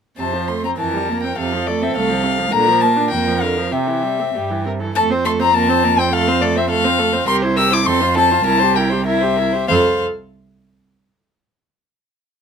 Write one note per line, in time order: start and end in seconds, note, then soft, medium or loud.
0.18 0.68 F2 soft
0.18 0.35 C3 soft
0.18 0.74 C5 soft
0.18 0.50 A5 medium
0.33 0.50 F3 soft
0.48 0.65 A3 soft
0.48 0.63 C6 soft
0.64 0.78 C4 soft
0.64 0.70 A#5 soft
0.77 1.27 F2 soft
0.77 0.95 E3 soft
0.77 1.38 A#4 soft
0.77 1.21 A5 medium
0.94 1.10 G3 soft
1.09 1.25 A#3 soft
1.23 1.38 C4 soft
1.23 1.37 G5 medium
1.37 1.85 F2 medium
1.37 1.55 C3 soft
1.37 2.52 A4 soft
1.37 1.69 F5 medium
1.53 1.69 F3 soft
1.67 1.83 A3 soft
1.67 1.84 D5 medium
1.82 1.98 C4 soft
1.82 1.96 E5 medium
1.95 2.42 C2 medium
1.95 2.11 A3 soft
1.95 2.54 F5 medium
2.09 2.25 F3 soft
2.24 2.40 C3 soft
2.38 2.52 F3 soft
2.52 3.01 A#2 medium
2.52 2.69 D3 medium
2.52 3.73 A#4 soft
2.52 2.83 A#5 medium
2.67 2.83 F3 soft
2.81 2.98 A#3 soft
2.81 3.10 A5 medium
2.97 3.13 D4 soft
3.11 3.62 F2 soft
3.11 3.29 A#3 soft
3.11 3.43 G5 medium
3.27 3.44 F3 soft
3.41 3.59 D3 soft
3.41 3.74 F5 medium
3.58 3.72 F3 soft
3.72 4.24 C3 soft
3.72 3.89 C3 soft
3.72 4.28 G4 soft
3.72 4.65 E5 soft
3.87 4.05 E3 soft
4.03 4.21 G3 soft
4.19 4.36 C4 soft
4.34 4.85 G2 soft
4.34 4.52 G3 soft
4.34 4.63 G4 soft
4.50 4.67 E3 soft
4.65 4.81 C3 soft
4.65 4.72 A#4 soft
4.80 4.94 E3 soft
4.80 4.95 A4 soft
4.95 7.23 F2 medium
4.95 5.11 A3 medium
4.95 5.13 A4 medium
4.95 5.04 A5 medium
5.10 5.27 C4 medium
5.10 5.27 C5 medium
5.25 5.41 A3 medium
5.25 5.41 A4 medium
5.25 5.31 C6 medium
5.39 5.54 C4 medium
5.39 5.54 C5 soft
5.39 5.56 A#5 medium
5.54 5.70 A#3 medium
5.54 5.71 A#4 medium
5.54 6.01 A5 medium
5.68 5.85 C4 medium
5.68 5.85 C5 soft
5.84 6.00 A#3 soft
5.84 6.00 A#4 soft
5.98 6.12 C4 medium
5.98 6.12 C5 soft
5.98 6.15 G5 medium
6.12 6.28 A3 medium
6.12 6.29 A4 medium
6.12 6.43 F5 medium
6.27 6.42 C4 soft
6.27 6.43 C5 medium
6.41 6.57 A3 medium
6.41 6.57 A4 medium
6.41 6.59 D5 medium
6.56 6.69 C4 medium
6.56 6.70 C5 medium
6.56 6.69 E5 medium
6.70 6.86 A3 medium
6.70 6.86 A4 medium
6.70 7.26 F5 medium
6.84 7.01 C4 medium
6.84 7.00 C5 soft
6.99 7.15 A3 medium
6.99 7.14 A4 soft
7.13 7.27 C4 soft
7.13 7.27 C5 medium
7.27 7.88 C2 medium
7.27 7.45 G4 medium
7.27 7.43 A#4 medium
7.27 7.35 C6 medium
7.42 7.59 E4 soft
7.42 7.58 C5 medium
7.56 7.73 G4 medium
7.56 7.72 A#4 medium
7.56 7.75 E6 medium
7.70 7.86 E4 medium
7.70 7.85 C5 soft
7.70 7.88 D6 medium
7.85 8.44 F2 medium
7.85 8.03 C4 medium
7.85 8.02 A4 medium
7.85 8.15 C6 medium
8.00 8.18 F4 medium
8.00 8.16 C5 medium
8.15 8.33 C4 soft
8.15 8.32 A4 soft
8.15 8.45 A5 medium
8.30 8.45 F4 soft
8.30 8.44 C5 soft
8.45 9.45 C2 medium
8.45 8.63 E4 medium
8.45 8.61 A#4 medium
8.45 8.78 A5 medium
8.59 8.78 G4 soft
8.59 8.76 C5 soft
8.74 8.93 E4 soft
8.74 8.91 A#4 soft
8.74 9.06 G5 medium
8.89 9.06 G4 soft
8.89 9.05 C5 soft
9.05 9.24 E4 soft
9.05 9.22 A#4 soft
9.05 9.67 E5 medium
9.21 9.40 G4 soft
9.21 9.38 C5 soft
9.36 9.56 E4 soft
9.36 9.54 A#4 soft
9.53 9.69 G4 soft
9.53 9.67 C5 soft
9.68 10.01 F2 medium
9.68 10.02 A4 soft
9.68 10.01 C5 medium
9.68 10.01 F5 medium